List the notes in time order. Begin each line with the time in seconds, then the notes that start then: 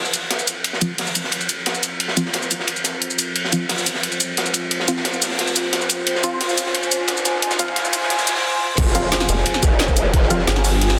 Already playing: F4 C5 G5
0.05 shaker
0.13 snare, closed hi-hat, ride, shaker
0.30 snare, closed hi-hat, ride
0.38 ride, shaker
0.47 closed hi-hat, ride, shaker
0.64 A#5, closed hi-hat, ride
0.73 snare
0.81 F3 C4 F4, closed hi-hat, ride, shaker
0.98 snare, closed hi-hat, open hi-hat
1.06 snare, shaker
1.15 closed hi-hat, ride, shaker
1.24 snare
1.32 closed hi-hat, ride
1.41 ride, shaker
1.49 closed hi-hat, ride, shaker
1.66 snare, closed hi-hat, ride
1.75 shaker
1.83 closed hi-hat, ride, shaker
2.00 closed hi-hat, ride
2.08 snare
2.17 F3 C4 F4, closed hi-hat, ride, shaker
2.25 snare
2.33 snare, closed hi-hat, ride
2.42 shaker
2.51 closed hi-hat, ride, shaker
2.59 snare
2.67 closed hi-hat, ride
2.76 shaker
2.84 snare, closed hi-hat, ride, shaker
3.02 closed hi-hat
3.10 shaker
3.18 closed hi-hat, ride, shaker
3.36 G5, closed hi-hat, ride, riser
3.44 snare
3.52 F3 C4 F4, closed hi-hat, ride, shaker
3.69 snare, closed hi-hat, open hi-hat
3.78 snare, shaker
3.86 closed hi-hat, ride, shaker
3.94 snare
4.03 closed hi-hat, ride
4.11 ride, shaker
4.20 closed hi-hat, ride, shaker
4.37 snare, closed hi-hat, ride
4.46 shaker
4.54 closed hi-hat, ride, shaker
4.71 closed hi-hat, ride
4.80 snare
4.88 F3 C4 F4, closed hi-hat, ride, shaker
4.96 snare
5.05 snare, closed hi-hat, ride
5.13 shaker
5.22 snare, closed hi-hat, open hi-hat, shaker
5.30 snare
5.39 snare, closed hi-hat, open hi-hat
5.47 shaker
5.56 snare, closed hi-hat, ride, shaker
5.73 snare, closed hi-hat, ride
5.81 ride, shaker
5.89 closed hi-hat, ride, shaker
6.07 G#5, closed hi-hat, ride
6.15 snare
6.24 F3 C4 F4, closed hi-hat, ride, shaker
6.41 snare, closed hi-hat, open hi-hat
6.49 snare, shaker
6.58 closed hi-hat, ride, shaker
6.66 snare
6.75 closed hi-hat, ride
6.83 ride, shaker
6.92 closed hi-hat, ride, shaker
7.08 snare, closed hi-hat, ride
7.17 shaker
7.25 snare, closed hi-hat, ride, shaker
7.42 closed hi-hat, ride, noise sweep
7.51 snare, ride, shaker
7.59 F3 C4 F4, closed hi-hat, shaker
7.68 ride
7.76 snare, closed hi-hat, ride
7.85 shaker
7.93 closed hi-hat, ride, shaker
8.02 snare
8.10 snare, closed hi-hat, open hi-hat
8.19 snare, open hi-hat, shaker
8.27 snare, closed hi-hat, open hi-hat, shaker
8.35 snare, open hi-hat
8.77 F1 F4 G4 G#4, kick, closed hi-hat, crash, ride, impact
8.86 snare
8.95 F3 C4 F4, closed hi-hat, ride, shaker
9.12 snare, closed hi-hat, open hi-hat
9.20 snare, shaker
9.29 F1, closed hi-hat, ride, shaker
9.37 snare
9.46 closed hi-hat, ride
9.54 snare, ride, shaker
9.63 F1, kick, closed hi-hat, ride, shaker
9.79 snare, closed hi-hat, ride
9.88 kick, shaker
9.96 closed hi-hat, ride, shaker
10.14 kick, closed hi-hat, ride
10.22 snare
10.30 F3 C4 F4, closed hi-hat, ride, shaker
10.39 snare
10.47 G1, snare, closed hi-hat, ride
10.56 snare, shaker
10.64 snare, open hi-hat, shaker
10.74 snare
10.81 snare, closed hi-hat, open hi-hat
10.90 snare, shaker